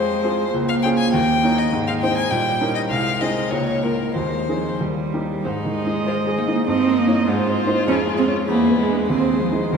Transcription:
Already playing: grand piano F2 C4 F4 G#4, cello G#3, violin C5
0.23 grand piano C4 F4 G#4
0.53 grand piano C#2, cello A#3
0.69 violin F5
0.82 grand piano C#4 F4 G#4, violin G5
0.98 violin G#5
1.13 grand piano D#2, violin G5
1.43 grand piano A#3 D#4 C#5
1.58 violin D#5
1.72 grand piano G#2, cello G#3
1.87 violin F5
2.02 grand piano C4 D#4 C5, violin G5
2.17 violin G#5
2.30 grand piano A#2, cello G3, violin G5
2.61 grand piano C#4 D#4 A#4
2.75 violin D#5
2.90 grand piano C2, cello G#3, violin F5
3.21 grand piano C4 D#4 G#4, violin D#5
3.51 grand piano C#2, cello A#3, violin C#5
3.83 grand piano A#3 F4 A#4, violin A#4
4.15 grand piano D#2, cello G#3, violin C5
4.48 cello F3, grand piano C4 D#4 G#4
4.80 grand piano D#2, cello G3
5.13 grand piano A#3 D#4 G4
5.44 grand piano G#2, cello G#3, violin D#4, viola C5
5.65 grand piano D#3
5.75 viola D#5
5.86 grand piano D#4
6.06 violin F4, grand piano C5
6.27 grand piano G#4
6.38 cello A#3, violin D#4
6.48 grand piano D#4
6.67 grand piano G2, cello C4, violin D#4, viola D#5
6.87 grand piano A#3
6.98 cello A#3
7.08 grand piano D#4 C#5
7.27 grand piano G#2, cello G#3, violin F4, viola C5
7.48 grand piano C4
7.67 grand piano D#4 C5
7.87 grand piano F2, cello C#4, viola G#4
8.07 grand piano G#3
8.18 cello C4
8.28 grand piano C#4 C#5
8.48 grand piano E2, cello A#3, violin E4, viola G#4
8.68 grand piano B3
8.79 cello G#3
8.89 grand piano D4 B4
9.10 grand piano D#2, cello C4, viola G#4, violin C5
9.31 grand piano G#3
9.41 cello F3
9.52 grand piano D#4 D#5
9.72 grand piano D#2, cello G3, viola A#4

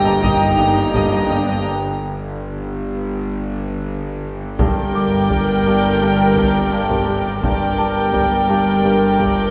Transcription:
Already playing: synth drone G1, harp G2 G3, french horn section A#3 G4, viola section G4, violin section G5 A#5
0.04 cello section G2, violin section D#5
0.22 double bass section G1, cello section G2, harp G3, french horn section A#3 G4, viola section D#4, violin section D#5, taiko
0.57 double bass section G1, cello section G2, harp G2, violin section D#5
0.94 double bass section G1, cello section G2, harp G2, violin section D#5, taiko
1.11 cello section G2, violin section D#5
1.29 double bass section G1, cello section G2, harp G3, viola section D4, violin section D#5, celesta D#6
1.48 cello section G2, violin section D#5
1.67 synth drone G1
4.59 double bass section G1, synth drone G1, cello section G2, harp G2, viola section A#4, violin section D5 G5, taiko
4.95 harp G3, celesta D6
5.30 harp G3, taiko
5.67 harp G2
6.02 harp G2
6.37 harp G2, taiko
6.72 harp G2
6.90 taiko
7.08 harp G2
7.42 double bass section G1, synth drone G1, cello section G2, harp G2, viola section A#4, violin section D5 G5, taiko
7.78 harp G3, celesta A5
8.14 harp G3, taiko
8.49 harp G2
8.84 harp G2
9.18 harp G2, taiko

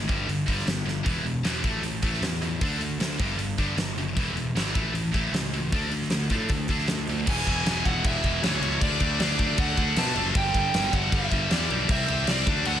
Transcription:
0.08 picked electric bass G1, distorted electric guitar G2 D3 G3, kick, open hi-hat
0.28 picked electric bass G1, distorted electric guitar G2 D3, open hi-hat
0.47 picked electric bass G1, distorted electric guitar G2 D3 G3, kick, open hi-hat
0.59 snare
0.66 picked electric bass G1, distorted electric guitar G2 D3, snare, open hi-hat
0.85 picked electric bass G1, distorted electric guitar G2 D3, snare
1.03 picked electric bass E1, distorted electric guitar E2 B2 E3, kick, open hi-hat
1.23 picked electric bass E1, distorted electric guitar E2 B2, open hi-hat
1.43 picked electric bass E1, distorted electric guitar E2 B2 E3, snare, open hi-hat
1.63 picked electric bass A1, distorted electric guitar A2 E3 A3, kick, open hi-hat
1.82 picked electric bass A1, distorted electric guitar A2 E3, open hi-hat
2.02 picked electric bass A1, distorted electric guitar A2 E3 A3, kick, open hi-hat
2.14 snare
2.21 picked electric bass E2, distorted electric guitar A2 E3, snare, open hi-hat
2.42 distorted electric guitar A2 E3, open hi-hat
2.61 picked electric bass D2, distorted electric guitar D3 A3 D4, kick, open hi-hat
2.79 picked electric bass D2, distorted electric guitar D3 A3, open hi-hat
2.99 picked electric bass D2, distorted electric guitar D3 A3, snare, open hi-hat
3.19 picked electric bass G1, distorted electric guitar G2 D3 G3, kick, open hi-hat
3.37 picked electric bass G1, distorted electric guitar G2 D3, open hi-hat
3.58 picked electric bass G1, distorted electric guitar G2 D3 G3, kick, open hi-hat
3.75 picked electric bass G1, distorted electric guitar G2 D3, snare, open hi-hat
3.95 picked electric bass F#1, distorted electric guitar G2 D3, open hi-hat
4.16 picked electric bass E1, distorted electric guitar E2 B2 E3, kick, open hi-hat
4.33 picked electric bass E1, distorted electric guitar E2 B2, open hi-hat
4.54 picked electric bass G#1, distorted electric guitar E2 B2 E3, snare, open hi-hat
4.73 picked electric bass A1, distorted electric guitar A2 E3 A3, kick, open hi-hat
4.92 picked electric bass A1, distorted electric guitar A2 E3, open hi-hat
5.13 picked electric bass A1, distorted electric guitar A2 E3 A3, kick, open hi-hat
5.31 picked electric bass C#2, distorted electric guitar A2 E3, snare, open hi-hat
5.53 distorted electric guitar A2 E3, open hi-hat
5.72 picked electric bass D2, distorted electric guitar D3 A3 D4, kick, open hi-hat
5.90 picked electric bass D2, distorted electric guitar D3 A3, open hi-hat
6.02 snare
6.10 picked electric bass D2, distorted electric guitar D3 A3, snare, open hi-hat
6.30 picked electric bass A2, distorted electric guitar D3 A3 D4, kick, open hi-hat
6.49 picked electric bass D2, distorted electric guitar D3 A3, kick, open hi-hat
6.68 picked electric bass D2, distorted electric guitar D3 A3 D4, kick, open hi-hat
6.79 snare
6.88 picked electric bass D2, distorted electric guitar D3 A3, snare, open hi-hat
7.07 picked electric bass D2, distorted electric guitar D3 A3, open hi-hat
7.27 picked electric bass E1, distorted electric guitar E2 B2 E3, lead electric guitar G#5, kick, crash
7.46 picked electric bass E1, distorted electric guitar E2 B2 E3, kick, crash
7.66 picked electric bass E1, distorted electric guitar E2 B2 E3, snare, crash
7.85 picked electric bass E1, distorted electric guitar E2 B2 E3, lead electric guitar F#5, kick, crash
8.04 picked electric bass E1, distorted electric guitar E2 B2 E3, lead electric guitar E5, kick, crash
8.23 picked electric bass E1, distorted electric guitar E2 B2 E3, kick, crash
8.42 picked electric bass D2, distorted electric guitar E2 B2 E3, lead electric guitar C#5, snare, crash
8.60 picked electric bass C#2, distorted electric guitar E2 B2 E3, crash
8.81 picked electric bass D2, distorted electric guitar D3 A3 D4, lead electric guitar D5, kick, crash
9.00 picked electric bass D2, distorted electric guitar D3 A3 D4, kick, crash
9.20 picked electric bass D2, distorted electric guitar D3 A3 D4, lead electric guitar D5, snare, crash
9.38 picked electric bass D2, distorted electric guitar D3 A3 D4, kick, crash
9.57 picked electric bass D2, distorted electric guitar D3 A3 D4, lead electric guitar F#5, kick, crash
9.77 picked electric bass D2, distorted electric guitar D3 A3 D4, kick, crash
9.96 picked electric bass B2, distorted electric guitar D3 A3 D4, lead electric guitar A5, snare, crash
10.16 picked electric bass F#1, distorted electric guitar D3 A3 D4, crash
10.35 picked electric bass G1, distorted electric guitar G2 D3 G3, lead electric guitar G5, kick, crash
10.54 picked electric bass G1, distorted electric guitar G2 D3 G3, kick, crash
10.74 picked electric bass G1, distorted electric guitar G2 D3 G3, snare, crash
10.93 picked electric bass G1, distorted electric guitar G2 D3 G3, lead electric guitar F#5, kick, crash
11.12 picked electric bass G1, distorted electric guitar G2 D3 G3, lead electric guitar E5, kick, crash
11.31 picked electric bass G1, distorted electric guitar G2 D3 G3, kick, crash
11.50 picked electric bass E2, distorted electric guitar G2 D3 G3, lead electric guitar D5, snare, crash
11.70 picked electric bass B1, distorted electric guitar G2 D3 G3, crash
11.89 picked electric bass C2, distorted electric guitar C3 G3 C4, lead electric guitar E5, kick, crash
12.08 picked electric bass C2, distorted electric guitar C3 G3 C4, crash
12.27 picked electric bass C2, distorted electric guitar C3 G3 C4, lead electric guitar D5, snare, crash
12.47 picked electric bass D2, distorted electric guitar D3 A3 D4, kick, crash
12.65 picked electric bass D2, distorted electric guitar D3 A3 D4, lead electric guitar F#5, crash

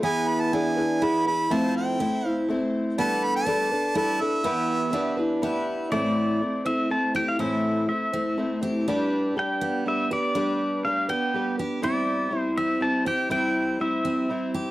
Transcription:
0.02 twelve-string acoustic guitar E3 B3 E4 G#4 B4, harmonica G#5
0.29 harmonica B5
0.41 harmonica A5
0.52 twelve-string acoustic guitar B3 E4 G#4 B4, steel-string acoustic guitar D4, harmonica G#5
0.76 twelve-string acoustic guitar E4 G#4 B4
1.01 twelve-string acoustic guitar B3 E4 G#4 B4, harmonica B5
1.26 twelve-string acoustic guitar E4 G#4 B4, harmonica B5
1.50 twelve-string acoustic guitar F3 A3 C4 E4 C5, harmonica A5
1.77 harmonica G5
1.99 twelve-string acoustic guitar A3 C4 E4 C5
2.25 twelve-string acoustic guitar C4 E4 C5, harmonica F5
2.48 twelve-string acoustic guitar A3 C4 E4 C5
2.98 twelve-string acoustic guitar G3 D4 A4 B4, steel-string acoustic guitar B3, harmonica A5
3.24 harmonica B5
3.36 harmonica A5
3.47 twelve-string acoustic guitar G3 D4 A4 B4
3.72 twelve-string acoustic guitar D4 A4 B4
3.95 twelve-string acoustic guitar G3 D4 A4 B4, steel-string acoustic guitar E4, harmonica A5
4.20 twelve-string acoustic guitar D4 A4 B4, harmonica E5
4.44 twelve-string acoustic guitar E3 B3 E4 G4 B4
4.92 twelve-string acoustic guitar B3 E4 G4 B4, steel-string acoustic guitar D4
5.17 twelve-string acoustic guitar E4 G4 B4
5.42 twelve-string acoustic guitar B3 E4 G4 B4
5.91 twelve-string acoustic guitar A2 E3 A3 C4 E4 C5, pedal steel guitar D5
6.41 twelve-string acoustic guitar A3 C4 E4 C5
6.65 twelve-string acoustic guitar A3 C4 E4 C5, pedal steel guitar E5
6.90 twelve-string acoustic guitar A3 C4 E4 C5, pedal steel guitar A5
7.14 twelve-string acoustic guitar A3 C4 E4 C5, steel-string acoustic guitar G4, pedal steel guitar G5
7.28 pedal steel guitar F5
7.39 twelve-string acoustic guitar A2 E3 A3 C4 E4 C5, pedal steel guitar E5
7.88 twelve-string acoustic guitar A3 C4 E4 C5, pedal steel guitar E5
8.12 twelve-string acoustic guitar A3 C4 E4 C5
8.38 twelve-string acoustic guitar A3 C4 E4 C5
8.62 twelve-string acoustic guitar A3 C4 E4 C5, steel-string acoustic guitar G4
8.88 twelve-string acoustic guitar G3 D4 G4 B4
9.36 twelve-string acoustic guitar G3 D4 G4 B4, pedal steel guitar G5
9.61 steel-string acoustic guitar B3
9.85 twelve-string acoustic guitar G3 D4 G4 B4, pedal steel guitar E5
10.11 twelve-string acoustic guitar D4 G4 B4, pedal steel guitar D5
10.35 twelve-string acoustic guitar G3 D4 G4 B4
10.85 twelve-string acoustic guitar G3 D4 G4 B4, pedal steel guitar F5
11.08 steel-string acoustic guitar B3, twelve-string acoustic guitar D4 G4 B4, pedal steel guitar G5
11.34 twelve-string acoustic guitar G3 D4 G4 B4
11.58 twelve-string acoustic guitar D4 G4 B4
11.82 twelve-string acoustic guitar G3 C4 E4 C5, pedal steel guitar D5
12.30 twelve-string acoustic guitar G3 C4 E4 C5
12.39 pedal steel guitar C5
12.57 steel-string acoustic guitar C4, pedal steel guitar E5
12.80 twelve-string acoustic guitar G3 C4 E4 C5, pedal steel guitar A5
13.05 twelve-string acoustic guitar C4 E4 C5, steel-string acoustic guitar G4, pedal steel guitar G5
13.29 twelve-string acoustic guitar G3 C4 E4 C5, pedal steel guitar G5
13.80 twelve-string acoustic guitar G3 C4 E4 C5, pedal steel guitar E5
14.05 steel-string acoustic guitar C4
14.29 twelve-string acoustic guitar G3 C4 E4 C5
14.54 steel-string acoustic guitar G4

